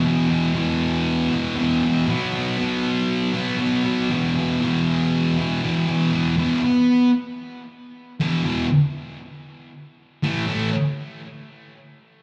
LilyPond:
\new Staff \with { instrumentName = "Distorted electric guitar" } { \clef bass \time 4/4 \key b \phrygian \tempo 4 = 118 <e, b, e>8 <b, e>8 <e, b, e>4. <b, e>8 <e, b, e>8 <b, e>8 | <b, fis b>8 <fis b>8 <b, fis b>4. <fis b>8 <b, fis b>8 <fis b>8 | <e, b, e>8 <b, e>8 <e, b, e>4. <b, e>8 <e, b, e>8 <b, e>8 | <e, b, e>8 <e, b, e>8 r2. |
<e, b, e>8 <e, b, e>8 r2. | <a, e a>8 <a, e a>8 r2. | }